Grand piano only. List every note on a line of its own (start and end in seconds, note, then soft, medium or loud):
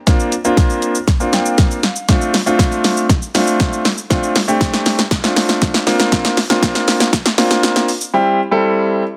0.07 0.32 A#3 medium
0.07 0.32 C4 medium
0.07 0.32 D4 medium
0.07 0.32 F4 medium
0.45 0.95 A#3 medium
0.45 0.95 C4 medium
0.45 0.95 D4 medium
0.45 0.95 F4 loud
1.20 1.79 A#3 medium
1.20 1.79 C4 medium
1.20 1.79 D4 medium
1.20 1.79 F4 medium
1.33 1.57 G5 medium
1.58 2.05 F5 medium
2.08 2.34 A3 medium
2.08 2.34 C4 medium
2.08 2.34 D4 medium
2.08 2.34 F4 loud
2.46 3.05 A3 medium
2.46 3.05 C4 medium
2.46 3.05 D4 medium
2.46 3.05 F4 loud
3.35 3.85 A3 medium
3.35 3.85 C4 medium
3.35 3.85 D4 medium
3.35 3.85 F4 loud
4.10 4.35 A3 medium
4.10 4.35 C4 medium
4.10 4.36 D4 medium
4.10 4.36 F4 loud
4.48 4.98 A3 medium
4.48 4.98 C4 medium
4.48 4.98 D4 medium
4.48 4.99 G4 loud
5.24 5.82 A3 medium
5.24 5.82 C4 medium
5.24 5.82 D4 medium
5.24 5.83 F4 medium
5.87 6.37 A#3 loud
5.87 6.37 C4 medium
5.87 6.37 D4 medium
5.87 6.38 F4 loud
6.50 7.08 A#3 medium
6.50 7.09 C4 medium
6.50 7.09 D4 medium
6.50 7.09 F4 loud
7.38 7.88 A#3 medium
7.38 7.88 C4 medium
7.38 7.88 D4 medium
7.38 7.88 F4 loud
8.13 8.39 G3 medium
8.13 8.39 C4 medium
8.13 8.39 E4 medium
8.13 8.39 G4 loud
8.51 9.02 G3 loud
8.51 9.02 C4 medium
8.51 9.02 E4 medium
8.51 9.02 A4 loud